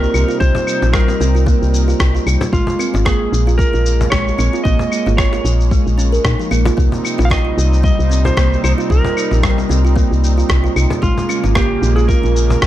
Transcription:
Already playing: analog synth pad C3 G3 C4 D#4, singing bowl F4, electric slide guitar A#4
0.03 shaker
0.14 fm bass C2, claves, shaker
0.28 kalimba F4, shaker
0.40 fm bass C2, kalimba F4, electric slide guitar C5, kick, shaker
0.55 kalimba F4, cajon bass, shaker
0.67 claves, shaker
0.82 fm bass A#1, cajon slap, shaker
0.93 kalimba G3, electric slide guitar A#4, kick, cross-stick, shaker
1.08 cajon slap, shaker
1.20 fm bass C2, kalimba C4, shaker
1.35 kalimba F4, shaker
1.46 kalimba A#3, kick, shaker
1.62 fm bass C2, shaker
1.74 shaker
1.88 kalimba F4, shaker
2.00 fm bass C2, kalimba F4, kick, cross-stick, shaker
2.15 kalimba F4, shaker
2.27 fm bass C2, claves, shaker
2.41 cajon bass, cajon slap, shaker
2.52 fm bass A#1, analog synth pad G#3 A#3, kalimba G#3, electric slide guitar F4, kick, shaker
2.67 cajon bass, shaker
2.79 kalimba C4, cajon slap, claves, shaker
2.94 fm bass G#1, kalimba F4, cajon slap, shaker
3.05 kalimba A#3, electric slide guitar G#4, kick, cross-stick, shaker
3.33 fm bass A#1, shaker
3.47 kalimba F4, shaker
3.58 kalimba F4, electric slide guitar A#4, kick, shaker
3.73 fm bass A#1, kalimba F4, shaker
3.86 shaker
4.01 cajon bass, shaker
4.10 fm bass A#1, kalimba G#3, electric slide guitar C#5, kick, cross-stick, shaker
4.28 shaker
4.38 fm bass A#1, kalimba C4, claves, shaker
4.53 kalimba F4, shaker
4.64 fm bass A#1, kalimba A#3, electric slide guitar D#5, kick, shaker
4.79 cajon bass, shaker
4.92 claves, shaker
5.06 fm bass G#1, kalimba F4, cajon slap, shaker
5.17 kalimba F4, electric slide guitar C#5, kick, cross-stick, shaker
5.33 kalimba F4, cajon slap, shaker
5.45 fm bass A#1, shaker
5.61 shaker
5.71 kalimba G#3, kick, shaker
5.86 fm bass A#1, shaker
5.98 kalimba C#4, shaker
6.13 kalimba A#4, shaker
6.24 fm bass A#2, kalimba D#4, kick, cross-stick, shaker
6.39 kalimba F3, shaker
6.51 fm bass A#1, kalimba A#3, claves, shaker
6.65 kalimba F4, cajon bass, cajon slap, shaker
6.77 fm bass C2, analog synth pad C3 G3 C4 D#4, kalimba A#3, kick, shaker
6.92 cajon bass, shaker
7.04 cajon slap, claves, shaker
7.18 fm bass A#1, kalimba F4, cajon slap, shaker
7.25 electric slide guitar F5
7.30 kalimba F4, electric slide guitar D#5, kick, cross-stick, shaker
7.45 kalimba F4
7.57 fm bass C2, shaker
7.73 shaker
7.83 kalimba G3, electric slide guitar D#5, kick, shaker
7.99 fm bass C2, shaker
8.10 kalimba C4, shaker
8.25 kalimba F4, electric slide guitar C5, cajon bass, shaker
8.37 fm bass C2, kalimba A#3, kick, cross-stick, shaker
8.53 shaker
8.64 fm bass C2, electric slide guitar C5, claves, shaker
8.78 kalimba F4, shaker
8.90 fm bass C2, kalimba F4, electric slide guitar A#4, kick, shaker
9.04 kalimba F4, cajon bass, shaker
9.17 claves, shaker
9.31 fm bass A#1, cajon slap, shaker
9.43 kalimba G3, kick, cross-stick, shaker
9.58 cajon slap, shaker
9.69 fm bass C2, kalimba C4, shaker
9.85 kalimba F4, shaker
9.96 kalimba A#3, kick, shaker
10.11 fm bass C2, shaker
10.24 shaker
10.38 kalimba F4, shaker
10.49 fm bass C2, kalimba F4, kick, cross-stick, shaker
10.64 kalimba F4, shaker
10.76 fm bass C2, claves, shaker
10.90 cajon bass, cajon slap, shaker
11.02 fm bass A#1, analog synth pad C#3 G#3 A#3, kalimba G#3, electric slide guitar F4, kick, shaker
11.18 cajon bass, shaker
11.29 kalimba C#4, cajon slap, claves, shaker
11.44 fm bass G#1, kalimba F4, cajon slap, shaker
11.55 kalimba A#3, electric slide guitar G4, kick, cross-stick, shaker
11.82 fm bass A#1, shaker
11.96 kalimba F4, electric slide guitar G#4, shaker
12.08 kalimba F4, electric slide guitar A#4, kick, shaker
12.24 fm bass A#1, kalimba F4, shaker
12.36 shaker
12.50 cajon bass, shaker
12.62 fm bass A#1, kalimba G#3, kick, cross-stick, shaker

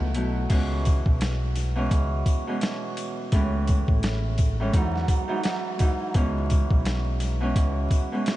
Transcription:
Already playing: harp B2 F#3 A3 E4
0.01 picked electric bass C#2
0.15 picked electric bass B1, harp B2 F#3 A3 E4, closed hi-hat
0.49 picked electric bass C#2, harp B2 E3 G#3 C#4, kick, closed hi-hat, crash, sleigh bells
0.85 kick, closed hi-hat, sleigh bells
1.06 picked electric bass B1, kick
1.21 snare, closed hi-hat, sleigh bells
1.56 snare, closed hi-hat, sleigh bells
1.75 harp B2 E3 G#3 C#4
1.91 picked electric bass C#2, kick, closed hi-hat, sleigh bells
2.26 kick, closed hi-hat, sleigh bells
2.47 harp B2 E3 G#3 C#4
2.61 snare, closed hi-hat, sleigh bells
2.97 closed hi-hat, sleigh bells
3.32 picked electric bass C#2, harp A2 E3 G#3 C#4, kick, closed hi-hat, sleigh bells
3.67 kick, closed hi-hat, sleigh bells
3.88 picked electric bass A1, kick
4.03 snare, closed hi-hat, sleigh bells
4.38 kick, closed hi-hat, sleigh bells
4.60 harp A2 E3 G#3 C#4
4.73 picked electric bass E2, harp G#2 E3 F#3 D#4, kick, closed hi-hat, sleigh bells
4.96 snare
5.08 kick, closed hi-hat, sleigh bells
5.28 harp G#2 E3 F#3 D#4
5.43 harp G#2 E3 F#3 D#4, snare, closed hi-hat, sleigh bells
5.79 harp G#2 E3 F#3 D#4, kick, closed hi-hat, sleigh bells
6.14 picked electric bass C#2, harp B2 E3 G#3 C#4, kick, closed hi-hat, sleigh bells
6.50 kick, closed hi-hat, sleigh bells
6.70 picked electric bass B1, kick
6.85 snare, closed hi-hat, sleigh bells
7.20 snare, closed hi-hat, sleigh bells
7.40 harp B2 E3 G#3 C#4
7.56 picked electric bass C#2, kick, closed hi-hat, sleigh bells
7.91 kick, closed hi-hat, sleigh bells
8.12 harp B2 E3 G#3 C#4
8.26 snare, closed hi-hat, sleigh bells

